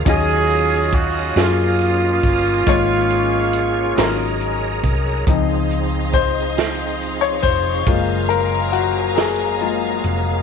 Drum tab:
HH |xxxxxx|xxxxxx|xxxxxx|xxxxxx|
SD |---o--|---o--|---o--|---o--|
BD |o-o--o|o----o|o-o--o|o-----|